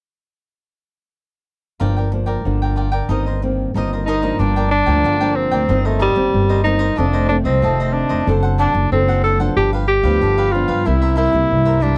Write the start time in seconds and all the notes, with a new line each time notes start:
1.80 G1 G2 F3 A#3 D4 F4 A#4 D5 G5
1.96 A#4 D5 G5
2.12 F3 A#3 D4, muted cavaquinho stroke
2.26 A#4 D5 G5
2.45 G1 D3 F3 A#3 D4
2.62 A#4 D5 G5
2.76 F4 A#4 D5 G5
2.92 A#4 D5 G5
3.09 G1 G2 D#3 A#3 C4 D#4 A#4 C5 D#5
3.26 A#4 C5 D#5
3.42 D#3 A#3 C4, muted cavaquinho stroke
3.74 G1 G2 D#3 A#3 C4 D#4 A#4 C5 D#5
3.93 A#4 C5 D#5
4.06 D#4 A#4 C5 D#5
4.22 F3 A#3 D4 A#4 C5 D#5
4.39 G1 G2 D4 F4 A#4 D5 G5
4.56 A#4 D5 G5
4.71 D4, muted cavaquinho stroke
4.86 D2 F3 A#3 D4 A#4 D5 G5
5.04 G1 D3 F4 A#4 D5 G5
5.20 F3 A#3 D4 A#4 D5 G5
5.36 C4
5.51 D2 A#4 D5 G5
5.69 G1 G2 D#3 A#3 C4 D#4 A#4 C5 D#5
5.85 A3 A#4 C5 D#5
5.99 G3 D#4 A#4 C5 D#5
6.15 G1 D#3 A#3 C4, muted cavaquinho stroke
6.34 G1 G2
6.49 A#4 C5 D#5
6.64 D#3 A#3 C4 D#4 A#4 C5 D#5
6.79 A#4 C5 D#5
6.96 F1 F2 D#3 A3 C4 D4 F4 A4 C5 D#5
7.13 A4 C5 D#5
7.29 D#3 A3 C4 D4, muted cavaquinho stroke
7.45 C2 C4 A4 C5 D#5
7.62 F1 C3 D#3 A3 C4 F4 A4 C5 D#5
7.80 A4 C5 D#5
7.93 D4
8.09 F1 A4 C5 D#5
8.27 F#1 F#3 C4 D4 A4 C5 F#5
8.43 A4 C5 F#5
8.58 D4 A4 C5 F#5
8.74 F#1, muted cavaquinho stroke
8.92 F#1 F#3 C4 D4 A4
9.08 A4 C5 F#5
9.24 D4 A4 C5 F#5
9.39 F3 B3 D4 A4 C5 F#5
9.56 G1 G2 D4 G4 B4 F5
9.73 G4 B4 F5
9.87 G4, muted cavaquinho stroke
10.03 D2 F3 B3 D4 G4 B4 F5
10.21 G1 D3 D4 G4 B4 F5
10.38 G4 B4 F5
10.52 F3 B3 D4 F4
10.68 G2 G4 B4 F5
10.85 C2 C3 G3 A#3 E4 A#4 C5 E5
11.02 A#4 C5 E5
11.16 E4 A#4 C5 E5
11.32 C2 G3 A#3 E4, muted cavaquinho stroke
11.51 C2 G2
11.65 A#4 C5 E5
11.80 G3 A#3 D4 E4 A#4 C5 E5